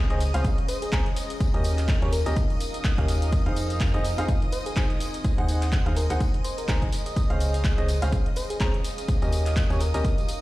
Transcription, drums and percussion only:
0.10 closed hi-hat
0.20 open hi-hat, tambourine
0.34 closed hi-hat, tambourine
0.44 kick, closed hi-hat, tambourine
0.58 closed hi-hat
0.68 open hi-hat, tambourine
0.82 closed hi-hat, tambourine
0.92 kick, clap, closed hi-hat, tambourine
1.06 closed hi-hat
1.16 open hi-hat, tambourine
1.30 closed hi-hat, tambourine
1.40 kick, closed hi-hat, tambourine
1.54 closed hi-hat
1.64 open hi-hat, tambourine
1.78 clap, closed hi-hat, tambourine
1.88 kick, clap, closed hi-hat, tambourine
2.02 closed hi-hat
2.12 open hi-hat, tambourine
2.26 closed hi-hat, tambourine
2.36 kick, closed hi-hat, tambourine
2.50 closed hi-hat, tambourine
2.60 open hi-hat, tambourine
2.74 closed hi-hat, tambourine
2.84 kick, clap, closed hi-hat, tambourine
2.98 kick, closed hi-hat
3.08 open hi-hat, tambourine
3.22 closed hi-hat, tambourine
3.32 kick, closed hi-hat, tambourine
3.46 closed hi-hat
3.56 open hi-hat, tambourine
3.70 closed hi-hat, tambourine
3.80 kick, clap, closed hi-hat, tambourine
3.94 closed hi-hat
4.04 open hi-hat, tambourine
4.18 closed hi-hat, tambourine
4.28 kick, closed hi-hat, tambourine
4.42 closed hi-hat
4.52 open hi-hat, tambourine
4.66 closed hi-hat, tambourine
4.76 kick, clap, closed hi-hat, tambourine
4.90 closed hi-hat
5.00 open hi-hat, tambourine
5.14 closed hi-hat, tambourine
5.24 kick, closed hi-hat, tambourine
5.38 closed hi-hat
5.48 open hi-hat, tambourine
5.62 clap, closed hi-hat, tambourine
5.72 kick, clap, closed hi-hat, tambourine
5.86 closed hi-hat
5.96 open hi-hat, tambourine
6.10 closed hi-hat, tambourine
6.20 kick, closed hi-hat, tambourine
6.34 closed hi-hat
6.44 open hi-hat, tambourine
6.57 closed hi-hat, tambourine
6.68 kick, clap, closed hi-hat, tambourine
6.82 kick, closed hi-hat
6.92 open hi-hat, tambourine
7.06 closed hi-hat, tambourine
7.16 kick, closed hi-hat, tambourine
7.30 closed hi-hat
7.40 open hi-hat, tambourine
7.54 closed hi-hat, tambourine
7.64 kick, clap, closed hi-hat, tambourine
7.78 closed hi-hat
7.88 open hi-hat, tambourine
8.02 closed hi-hat, tambourine
8.12 kick, closed hi-hat, tambourine
8.26 closed hi-hat
8.36 open hi-hat, tambourine
8.50 closed hi-hat, tambourine
8.60 kick, clap, closed hi-hat, tambourine
8.74 closed hi-hat
8.84 open hi-hat, tambourine
8.98 closed hi-hat, tambourine
9.08 kick, closed hi-hat, tambourine
9.22 closed hi-hat, tambourine
9.32 open hi-hat, tambourine
9.46 clap, closed hi-hat, tambourine
9.56 kick, clap, closed hi-hat, tambourine
9.70 closed hi-hat, tambourine
9.80 open hi-hat, tambourine
9.94 closed hi-hat, tambourine
10.04 kick, closed hi-hat, tambourine
10.17 closed hi-hat, tambourine
10.29 open hi-hat, tambourine

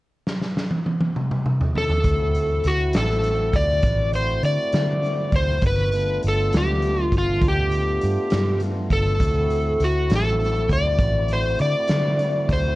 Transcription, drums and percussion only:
0.27 snare
0.41 snare
0.57 snare
0.70 high tom
0.86 high tom
1.00 high tom
1.16 mid tom
1.31 mid tom
1.46 mid tom
1.61 floor tom
1.75 floor tom
1.90 floor tom
2.04 kick, closed hi-hat
2.35 closed hi-hat
2.64 closed hi-hat
2.93 snare, closed hi-hat
3.23 closed hi-hat
3.53 kick, closed hi-hat
3.82 kick, closed hi-hat
4.13 closed hi-hat
4.43 closed hi-hat
4.72 snare, closed hi-hat
5.02 closed hi-hat
5.32 kick, closed hi-hat
5.62 kick, closed hi-hat
5.92 closed hi-hat
6.23 closed hi-hat
6.53 snare, closed hi-hat
6.82 closed hi-hat
7.12 kick, closed hi-hat
7.42 kick, closed hi-hat
7.71 closed hi-hat
8.01 closed hi-hat
8.30 snare, closed hi-hat
8.60 closed hi-hat
8.90 kick, closed hi-hat
9.20 kick, closed hi-hat
9.50 closed hi-hat
9.80 closed hi-hat
10.10 snare, closed hi-hat
10.40 closed hi-hat
10.69 kick, closed hi-hat
10.99 kick, closed hi-hat
11.28 closed hi-hat
11.59 closed hi-hat
11.88 snare, closed hi-hat
12.19 closed hi-hat
12.49 kick, snare, closed hi-hat

